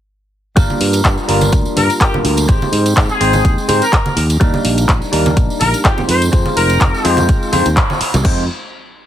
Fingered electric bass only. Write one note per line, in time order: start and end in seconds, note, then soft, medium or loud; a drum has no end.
0.57 0.68 G1 loud
0.80 1.01 G2 medium
1.05 1.16 G2 medium
1.29 1.49 G1 medium
1.53 1.64 D2 medium
1.76 1.88 G2 medium
2.24 2.45 D2 medium
2.49 2.60 G#1 medium
2.72 2.93 G#2 medium
2.97 3.08 G#2 medium
3.21 3.41 G#1 loud
3.45 3.56 D#2 medium
3.69 3.80 G#2 medium
4.16 4.37 D#2 medium
4.41 4.52 D#2 medium
4.65 4.85 A#1 medium
5.13 5.33 D#2 loud
5.37 5.48 A#1 medium
5.61 5.72 A#1 loud
6.09 6.29 F2 medium
6.33 6.44 F2 loud
6.57 6.77 F1 medium
7.05 7.25 F2 loud
7.53 7.64 F2 medium
7.66 7.75 D#2 medium
8.01 muted fingered electric bass stroke soft
8.14 8.23 C2 loud
8.25 8.47 F2 loud